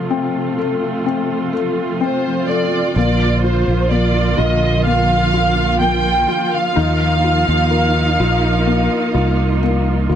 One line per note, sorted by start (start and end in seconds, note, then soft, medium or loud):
0.00 2.92 C3 soft
0.00 2.92 F3 soft
0.00 10.15 F3 medium
0.00 2.92 A3 medium
0.00 10.15 F4 medium
0.00 0.57 A4 soft
0.10 1.04 C4 soft
0.58 1.52 A4 soft
1.06 1.99 C4 soft
1.53 2.47 A4 soft
2.01 2.93 C4 soft
2.01 2.45 C5 medium
2.47 2.95 A4 soft
2.47 2.94 D5 medium
2.95 3.63 A#1 medium
2.95 6.73 D3 medium
2.95 6.73 A#3 soft
2.95 3.90 A#3 soft
2.95 3.40 D5 medium
3.43 4.37 F4 soft
3.43 3.91 C5 medium
3.68 4.35 A#1 medium
3.91 4.85 A#3 soft
3.91 4.38 D5 medium
4.38 6.25 A#1 medium
4.38 5.32 F4 soft
4.38 4.86 D#5 medium
4.85 5.79 A#3 soft
4.85 5.77 F5 medium
5.34 6.27 F4 soft
5.81 6.74 A#3 soft
5.81 6.53 G5 medium
6.28 6.75 F4 soft
6.53 9.39 F5 medium
6.76 7.44 D#2 medium
6.76 10.15 A#3 medium
6.76 10.15 D#4 medium
7.24 8.18 F4 soft
7.48 8.16 D#2 medium
7.70 9.58 A#4 soft
8.20 8.87 A#1 medium
8.20 9.13 F4 soft
8.67 9.62 A#3 soft
9.14 10.06 C2 medium
9.14 10.08 F4 soft
9.63 10.15 A#3 soft
10.09 10.15 D2 medium
10.09 10.15 F4 soft